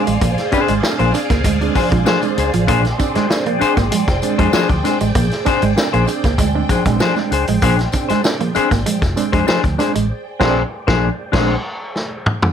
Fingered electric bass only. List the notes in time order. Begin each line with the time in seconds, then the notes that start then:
0.08 A1
0.22 A#1
0.69 G#1
1.00 A#1
1.30 C#2
1.45 D2
1.92 A#1
2.38 C#2
2.54 A1
2.69 A#1
3.16 muted fingered electric bass stroke
3.62 muted fingered electric bass stroke
3.77 G#1
4.08 F1
4.39 F2
4.54 muted fingered electric bass stroke
4.70 D2
5.01 A1
5.16 A#1
5.63 G#1
5.94 A#1
6.24 C#2
6.38 D2
6.86 A#1
7.32 C#2
7.48 A1
7.63 A#1
8.11 muted fingered electric bass stroke
8.56 muted fingered electric bass stroke
8.72 G#1
9.03 F1
9.34 F2
9.49 muted fingered electric bass stroke
9.64 D2
9.96 A1
10.41 A#1
10.88 A#1
11.34 A#1